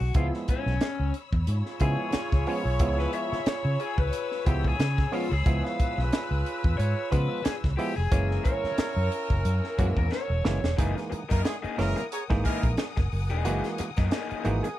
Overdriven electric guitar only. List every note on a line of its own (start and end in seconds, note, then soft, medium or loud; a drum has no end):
0.00 0.16 F#4 medium
0.16 0.25 F4 medium
0.51 1.12 C#4 medium
1.82 2.43 G#4 medium
2.47 2.99 C#5 loud
3.00 3.13 B4 medium
3.15 3.48 E5 medium
3.48 3.82 C#5 loud
3.80 3.99 G#4 medium
3.99 4.46 B4 loud
4.47 4.66 G4 loud
4.66 5.14 G#4 medium
5.13 5.31 F4 medium
5.31 5.65 G#4 medium
5.64 5.95 F5 medium
6.78 7.11 C#5 loud
7.11 7.46 B4 medium
7.44 7.53 G#4 medium
7.77 7.96 G4 medium
7.96 8.46 G#4 medium
8.44 9.07 C#5 loud
9.80 9.85 F#4 medium
9.98 10.11 A#4 loud
10.13 10.75 C#5 medium
10.77 10.94 E3 medium
10.77 10.95 A#3 medium
10.77 10.95 D#4 medium
10.77 10.94 G#4 medium
10.95 muted overdriven electric guitar stroke soft
11.10 muted overdriven electric guitar stroke soft
11.29 11.41 E3 medium
11.29 11.40 A#3 medium
11.29 11.40 D#4 medium
11.29 11.40 A#4 medium
11.44 muted overdriven electric guitar stroke soft
11.62 11.77 E3 medium
11.62 11.76 A#3 medium
11.62 11.76 D#4 medium
11.62 11.76 G#4 medium
11.78 muted overdriven electric guitar stroke soft
11.96 muted overdriven electric guitar stroke soft
12.30 muted overdriven electric guitar stroke medium
12.44 12.61 E3 medium
12.44 12.62 A#3 medium
12.44 12.62 D#4 medium
12.44 12.62 G#4 medium
12.64 muted overdriven electric guitar stroke soft
12.78 muted overdriven electric guitar stroke soft
12.96 muted overdriven electric guitar stroke soft
13.30 13.44 E3 medium
13.30 13.44 A#3 medium
13.30 13.44 D#4 medium
13.30 13.45 G#4 medium
13.45 13.62 E3 medium
13.45 13.62 A#3 medium
13.45 13.62 D#4 medium
13.45 13.63 G#4 loud
13.79 muted overdriven electric guitar stroke soft
13.97 14.08 E3 medium
13.97 14.08 A#3 medium
13.97 14.08 D#4 medium
13.97 14.07 A#4 medium
14.12 14.43 E3 medium
14.12 14.43 A#3 medium
14.12 14.43 D#4 medium
14.12 14.44 G#4 medium
14.46 muted overdriven electric guitar stroke soft
14.64 muted overdriven electric guitar stroke medium